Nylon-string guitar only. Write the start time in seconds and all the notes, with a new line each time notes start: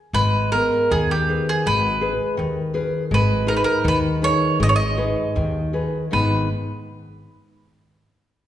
0.14 G#3
0.52 B3 G#4 A#4
0.90 D#3
1.29 G#4 B4
1.66 G#3
2.01 G#4 B4
2.37 D#3
2.74 G#4 A#4 B4
3.11 G#3
3.47 D#4 G#4 B4
3.84 D#3
4.22 D#4 G#4 B4
4.60 G#3
4.97 D#4 G#4 B4
5.36 D#3
5.73 D#4 G#4 B4
6.11 G#2 D#3 G#3 B3 D#4